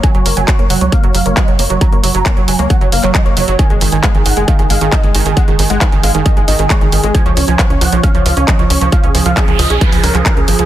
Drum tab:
HH |xxoxxxoxxxoxxxox|xxoxxxoxxxoxxxox|xxoxxxoxxxoxxxox|xxoxxxoxxxoxxxox|
CP |----x-------x---|----x------xx---|----x-------x---|----x-------x---|
BD |o---o---o---o---|o---o---o---o---|o---o---o---o---|o---o---o---o---|

HH |xxoxxxoxxxoxxxox|xxoxxxoxxooxxxox|
CP |----x-------x---|----x------xx---|
BD |o---o---o---o---|o---o---o---o---|